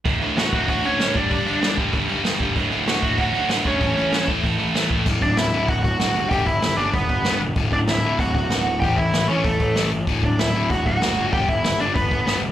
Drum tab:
CC |--------|--------|--------|--------|
HH |oooooooo|oooooooo|oooooooo|oooooooo|
SD |--o---o-|--o---o-|--o---o-|--o---o-|
BD |o--oo--o|o--oo--o|o--oo--o|o--oo--o|

CC |x-------|--------|--------|--------|
HH |-ooooooo|oooooooo|oooooooo|oooooooo|
SD |--o---o-|--o---o-|--o---o-|--o---o-|
BD |oo--oo--|oo--oo--|oo--oo--|oo--oo--|

CC |--------|--------|
HH |oooooooo|oooooooo|
SD |--o---o-|--o---o-|
BD |oo--oo--|oo--oo--|